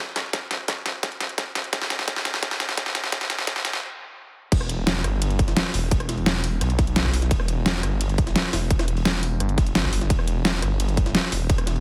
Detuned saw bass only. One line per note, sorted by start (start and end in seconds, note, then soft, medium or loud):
4.52 5.03 E1 medium
5.04 5.55 G1 loud
5.74 6.60 E1 loud
6.61 7.30 B1 loud
7.31 7.82 E1 loud
7.83 8.34 G1 medium
8.53 9.39 E1 medium
9.40 9.91 G1 loud
9.93 10.09 G1 loud
10.10 10.61 E1 loud
10.62 11.13 G1 medium
11.32 11.80 E1 loud